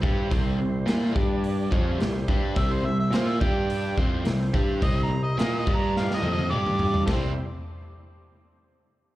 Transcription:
Already playing: G3 E4 C5
0.02 G2 G3 D4 G4, kick
0.30 C2 C3 G3 C4, kick, open hi-hat
0.58 C2 C3 G3
0.86 A#2 A#3 F4 A#4, snare, open hi-hat
1.14 G2 G3 D4 G4 D5, kick
1.44 open hi-hat
1.71 F2 F3 G#3 C4 F4 C#5, kick
1.90 G3 E4 C5
1.98 C2 C3 G3, snare, open hi-hat
2.28 G2 G3 D4 G4, kick
2.56 C2 C3 G3 C4 E5, kick, open hi-hat
2.72 C5
2.83 C2 C3 G3 E5
2.99 E5
3.11 A#2 A#3 F4 A#4 C5, snare, open hi-hat
3.28 E5
3.40 G2 G3 D4 G4 D5 G5, kick
3.70 open hi-hat
3.97 F2 F3 G3 C4 E4 F4 C5, kick
4.24 C2 C3 G3, snare, open hi-hat
4.54 G2 G3 D4 G4, kick
4.81 C2 C3 G3 C4 D#5, kick, open hi-hat
5.03 A#5
5.09 C2 C3 G3
5.23 D#5
5.37 A#2 A#3 F4 A#4 D#5, snare, open hi-hat
5.59 D#5
5.66 G2 G3 D4 G4 D5, kick
5.76 A#5
5.97 F5, snare
6.11 D#5, snare
6.22 F2 F3 C4 F4, high tom
6.32 D#5
6.39 high tom
6.50 G2 G3 D4 G4 D5, mid tom
6.66 mid tom
6.79 floor tom
6.94 floor tom
7.06 C2 C3 G3 C4 E4 F4 A4 C5, kick, snare, ride bell

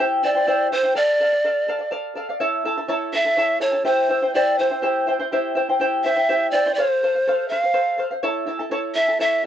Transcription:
0.00 E4 G4 C5 E5 G5
0.23 E4 C5 D5 E5 G5
0.35 E4 C5 G5
0.47 E4 G4 C5 E5 G5
0.72 E4 C5 E5 G5
0.83 E4 C5 G5
0.95 A4 D5 F5
1.20 A4 D5 F5
1.33 D5 F5
1.44 A4 D5 F5
1.68 A4 D5 F5
1.79 D5 F5
1.91 A4 D5 F5
2.15 A4 D5 F5
2.29 D5 F5
2.40 E4 A4 C#5 E5 A5
2.65 E4 A4 E5 A5
2.78 E4 A4 A5
2.88 E4 A4 C#5 E5 A5
3.13 E4 A4 E5 A5
3.25 E4 A4 A5
3.37 E4 A4 C#5 E5 A5
3.60 E4 A4 C#5 E5 A5
3.72 E4 A4 A5
3.85 E4 G4 C5 E5 G5
4.09 E4 C5 E5 G5
4.22 E4 C5 G5
4.34 E4 G4 C5 D5 E5 G5
4.59 E4 C5 E5 G5
4.70 E4 C5 G5
4.82 E4 G4 C5 E5 G5
5.07 E4 C5 E5 G5
5.20 E4 C5 G5
5.32 E4 G4 C5 E5 G5
5.55 E4 C5 E5 G5
5.69 E4 C5 G5
5.80 E4 G4 C5 E5 G5
6.04 E4 C5 E5 G5
6.16 E4 C5 G5
6.29 E4 G4 C5 E5 G5
6.51 E4 C5 D5 E5 G5
6.66 E4 C5 G5
6.74 A4 C5
6.80 F5
7.03 A4 C5 F5
7.15 C5 F5
7.27 A4 C5 F5
7.49 A4 C5 F5
7.64 C5 F5
7.74 A4 C5 F5
7.98 A4 C5 F5
8.11 C5 F5
8.23 E4 A4 C#5 E5 A5
8.47 E4 A4 E5 A5
8.59 E4 A4 A5
8.71 E4 A4 C#5 E5 A5
8.95 E4 A4 E5 A5
9.08 E4 A4 A5
9.19 E4 A4 C#5 E5 A5

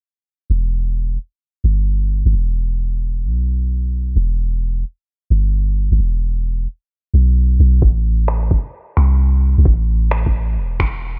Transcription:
0.50 E1
1.64 G1
2.25 G1
2.33 E1
3.24 B1
4.16 E1
5.30 G1
5.91 G1
5.99 E1
7.14 B1
7.59 B1
7.82 kick
8.28 finger snap
8.51 kick
8.97 C2, finger snap
9.58 C2
9.65 A1, kick
10.11 finger snap
10.26 kick
10.57 E1
10.80 finger snap, kick

